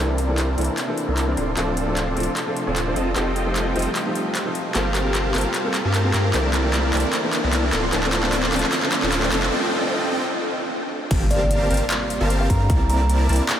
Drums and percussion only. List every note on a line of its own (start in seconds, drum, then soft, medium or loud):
0.18 closed hi-hat medium
0.38 clap medium
0.38 closed hi-hat medium
0.58 closed hi-hat soft
0.61 closed hi-hat medium
0.64 closed hi-hat medium
0.78 clap medium
0.78 closed hi-hat medium
0.98 closed hi-hat medium
1.17 clap soft
1.17 closed hi-hat medium
1.37 closed hi-hat medium
1.57 clap medium
1.57 closed hi-hat medium
1.77 closed hi-hat medium
1.97 clap medium
1.97 closed hi-hat medium
2.17 closed hi-hat soft
2.20 closed hi-hat medium
2.23 closed hi-hat medium
2.37 clap medium
2.37 closed hi-hat medium
2.57 closed hi-hat medium
2.76 clap medium
2.76 closed hi-hat medium
2.96 closed hi-hat medium
3.16 clap medium
3.16 closed hi-hat medium
3.36 closed hi-hat medium
3.56 clap medium
3.56 closed hi-hat medium
3.76 closed hi-hat soft
3.79 closed hi-hat medium
3.82 closed hi-hat medium
3.96 clap medium
3.96 closed hi-hat medium
4.15 closed hi-hat medium
4.35 clap medium
4.35 closed hi-hat medium
4.55 closed hi-hat medium
4.75 clap medium
4.75 closed hi-hat medium
4.95 clap medium
4.95 closed hi-hat medium
5.15 clap medium
5.15 closed hi-hat medium
5.35 clap medium
5.35 closed hi-hat soft
5.38 closed hi-hat medium
5.41 closed hi-hat medium
5.54 clap medium
5.54 closed hi-hat medium
5.74 clap medium
5.74 closed hi-hat medium
5.94 clap medium
5.94 closed hi-hat medium
6.14 clap medium
6.14 closed hi-hat medium
6.34 clap medium
6.34 closed hi-hat medium
6.54 clap medium
6.54 closed hi-hat medium
6.74 clap medium
6.74 closed hi-hat medium
6.93 clap medium
6.93 closed hi-hat soft
6.97 closed hi-hat medium
7.00 closed hi-hat medium
7.13 clap medium
7.13 closed hi-hat medium
7.33 clap medium
7.33 closed hi-hat medium
7.53 clap medium
7.53 closed hi-hat medium
7.73 clap medium
7.73 closed hi-hat medium
7.93 clap medium
7.93 closed hi-hat medium
8.03 clap medium
8.13 clap loud
8.13 closed hi-hat medium
8.23 clap medium
8.33 clap medium
8.33 closed hi-hat medium
8.43 clap medium
8.53 clap medium
8.53 closed hi-hat medium
8.56 closed hi-hat medium
8.59 clap medium
8.59 closed hi-hat medium
8.72 clap medium
8.72 closed hi-hat medium
8.83 clap medium
8.92 clap loud
8.92 closed hi-hat medium
9.03 clap medium
9.12 clap medium
9.12 closed hi-hat medium
9.23 clap medium
9.32 clap loud
9.32 closed hi-hat medium
9.43 clap medium
11.11 kick loud
11.11 closed hi-hat medium
11.11 crash loud
11.31 closed hi-hat medium
11.51 closed hi-hat medium
11.71 closed hi-hat medium
11.74 closed hi-hat medium
11.77 closed hi-hat medium
11.90 clap loud
11.90 closed hi-hat medium
12.10 closed hi-hat medium
12.30 closed hi-hat medium
12.50 kick medium
12.50 closed hi-hat medium
12.70 kick loud
12.70 closed hi-hat medium
12.90 closed hi-hat medium
13.09 closed hi-hat medium
13.29 closed hi-hat medium
13.33 closed hi-hat medium
13.36 closed hi-hat medium
13.49 clap loud
13.49 closed hi-hat medium